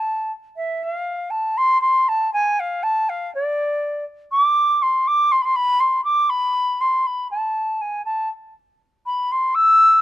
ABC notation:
X:1
M:4/4
L:1/16
Q:1/4=120
K:none
V:1 name="Flute"
a2 z2 e2 f4 a2 c'2 c'2 | a2 ^g2 f2 a2 f2 d6 | z2 d'4 c'2 d'2 c'/2 b/2 c' b2 c'2 | d'2 b4 c'2 b2 a4 ^g2 |
a2 z6 b2 c'2 e'4 |]